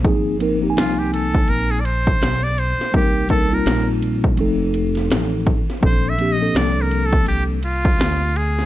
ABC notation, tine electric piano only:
X:1
M:4/4
L:1/16
Q:"Swing 16ths" 1/4=83
K:Ablyd
V:1 name="Tine electric piano"
[F,B,CEA]2 [F,B,CEB] [F,B,CEGa]6- [F,B,CEGa] z6 | [G,B,CEB]2 [G,B,CEB] [G,B,CEF]4- [G,B,CEF] [F,=A,CE=A]6- [F,A,CEA] z | [F,B,CD=A]2 [F,B,CDG] [F,B,CDA]6- [F,B,CDA] z6 |]